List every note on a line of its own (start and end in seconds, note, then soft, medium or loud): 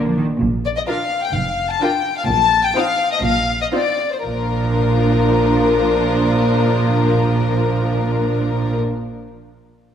0.00 0.21 A#1 soft
0.00 0.17 A#3 soft
0.00 0.21 D4 soft
0.07 0.18 F3 soft
0.18 0.26 D#3 soft
0.41 0.77 A#1 medium
0.41 0.77 A#2 medium
0.65 0.69 D5 soft
0.77 0.81 D#5 medium
0.87 0.96 D4 soft
0.87 0.95 F4 soft
0.87 0.96 F4 soft
0.87 0.95 A#4 soft
0.87 1.22 F5 medium
1.23 1.34 G5 medium
1.33 1.70 F1 medium
1.33 1.70 F2 soft
1.33 1.69 F5 medium
1.70 1.81 A5 medium
1.80 1.88 D4 soft
1.80 1.89 F4 soft
1.80 1.89 A#4 soft
1.80 2.16 G5 medium
2.17 2.28 F5 medium
2.27 2.65 A#1 medium
2.27 2.65 A#2 medium
2.27 2.62 A5 medium
2.64 2.75 G5 medium
2.75 2.83 C4 soft
2.75 2.83 D#4 soft
2.75 2.83 F4 soft
2.75 2.83 C5 soft
2.75 3.11 F5 medium
3.12 3.23 D#5 medium
3.23 3.62 A#1 medium
3.23 3.63 A#2 medium
3.23 3.60 F5 medium
3.61 3.66 D#5 medium
3.73 3.81 C4 soft
3.73 3.81 D#4 soft
3.73 3.81 F4 soft
3.73 3.81 C5 soft
3.73 4.11 D5 medium
4.13 4.25 C5 soft
4.25 8.76 A#1 soft
4.25 8.76 A#2 soft
4.25 8.76 F3 soft
4.25 8.76 D4 soft
4.25 8.76 F4 soft
4.25 8.76 A#4 soft